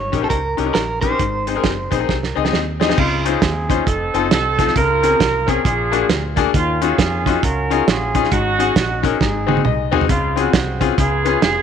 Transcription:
Already playing: clean electric guitar C#5
0.12 fingered electric bass A#1, grand piano C#4 D#4 G4 A#4, kick, closed hi-hat
0.20 grand piano C#4 D#4 G4 C5, clean electric guitar A4
0.30 fingered electric bass C#2, clean electric guitar A#4, kick, closed hi-hat
0.57 fingered electric bass C2, grand piano C#4 D#4 G4 A#4, closed hi-hat
0.65 grand piano C#4 D#4 G4 A#4
0.74 fingered electric bass A#1, clean electric guitar A#4, snare, closed hi-hat
1.01 grand piano C#4 D#4 G4 A#4, clean electric guitar C5, kick, closed hi-hat
1.11 grand piano C#4 D#4 G4 A#4
1.19 fingered electric bass G#1, grand piano G#2, kick, closed hi-hat
1.47 grand piano C4 D#4 G#4 C5, closed hi-hat
1.55 grand piano C4 D#4 G#4 A#4
1.64 fingered electric bass F#1, kick, snare, closed hi-hat
1.91 fingered electric bass A#1, grand piano C4 D#4 G#4 C5, kick, closed hi-hat
1.99 grand piano C4 D#4 G#4 C5, clean electric guitar A#4
2.09 fingered electric bass C2, kick, snare
2.23 snare
2.35 fingered electric bass C#2, grand piano C4 D#4 G#4 D#5
2.44 grand piano C4 D#4 G#4 D#5, snare
2.53 fingered electric bass D#2, snare
2.80 grand piano C4 D#4 G#4 D#5, snare
2.88 grand piano C4 D#4 G#4 D#5, snare
2.97 fingered electric bass C#2, grand piano C#3, horn section G#3 C4 F4, kick, crash
3.25 horn section C4 F4 G#4, grand piano C#4 D#4 F4 C5, closed hi-hat
3.42 fingered electric bass D#2, kick, snare, closed hi-hat
3.69 grand piano C#4 D#4 F4 C5, kick, closed hi-hat
3.86 fingered electric bass F1, horn section C4 D#4 A4, kick, closed hi-hat
4.14 fingered electric bass F#1, grand piano C4 D#4 F4 A4, closed hi-hat
4.31 fingered electric bass C2, horn section C4 D#4 A4, snare, closed hi-hat
4.58 grand piano C4 D#4 F4 A4, kick, snare, closed hi-hat
4.68 snare
4.76 fingered electric bass C#2, grand piano C#3, horn section F4 A#4, kick, closed hi-hat
5.03 grand piano C4 C#4 G#4 A#4, closed hi-hat
5.20 fingered electric bass C2, kick, snare, closed hi-hat
5.47 grand piano C4 C#4 G#4 A#4, horn section D4 F4 G#4, kick, closed hi-hat
5.65 fingered electric bass A#1, grand piano A#2, kick, closed hi-hat
5.92 grand piano A#3 D4 F#4 G#4, closed hi-hat
6.09 fingered electric bass D2, snare, closed hi-hat
6.36 grand piano A#3 D4 F#4 G#4, kick, closed hi-hat
6.54 fingered electric bass D#2, grand piano D#3, horn section A#3 C#4 F4, kick, closed hi-hat
6.81 grand piano C#4 D#4 F4 F#4, horn section C#4 F4 G#4, closed hi-hat
6.98 fingered electric bass F2, kick, snare, closed hi-hat
7.26 grand piano C#4 D#4 F4 F#4, kick, closed hi-hat
7.43 fingered electric bass C#2, horn section C#4 F#4 A#4, kick, closed hi-hat
7.70 grand piano C#4 D#4 F4 G#4, closed hi-hat
7.88 fingered electric bass A#1, horn section C#4 F4 G#4, snare, closed hi-hat
8.15 grand piano C#4 D#4 F4 G#4, kick, closed hi-hat
8.24 snare
8.31 fingered electric bass G#1, grand piano G#2, horn section C#4 D#4 F#4, kick, closed hi-hat
8.59 grand piano C#4 D#4 F#4 G#4, closed hi-hat
8.76 fingered electric bass A#1, kick, snare, closed hi-hat
9.03 horn section C4 D#4 G#4, grand piano C#4 D#4 F#4 A#4, kick, closed hi-hat
9.21 fingered electric bass G#1, grand piano G#2, kick, snare
9.47 grand piano C4 D#4 F#4 G#4, high tom
9.57 high tom
9.65 fingered electric bass C2, grand piano D#5, mid tom
9.91 grand piano C4 D#4 F#4 G#4 G#5, floor tom
10.01 floor tom
10.09 fingered electric bass C#2, grand piano C#3, horn section G#3 C4 F4, kick, closed hi-hat
10.36 grand piano C4 C#4 F4 G#4, horn section C4 F#4, closed hi-hat
10.53 fingered electric bass C2, kick, snare, closed hi-hat
10.80 grand piano C4 C#4 F4 G#4, kick, closed hi-hat
10.98 fingered electric bass C#2, grand piano C#3, horn section B3 F4 G#4, kick, closed hi-hat
11.25 grand piano B3 C#4 F4 G#4, closed hi-hat
11.42 fingered electric bass F1, horn section B3 F4 G#4, snare, closed hi-hat

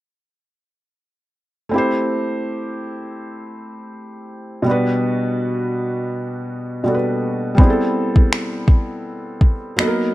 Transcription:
1.69 felt piano A3 C4
1.74 felt piano E4 G4
1.78 felt piano C5
4.62 felt piano B2 G3 B3
4.67 felt piano D4 F#4 B4
6.84 felt piano B2 G3 B3 D4 F#4
6.88 felt piano A4
6.95 felt piano B4
7.55 felt piano G3 B3, kick
7.59 felt piano C4 E4
7.63 felt piano G#4
7.70 felt piano A4
8.16 kick
8.33 finger snap
8.68 kick
9.41 kick
9.76 felt piano F#3 A#3 B3 D#4, finger snap
9.81 felt piano A4
9.87 felt piano A#4

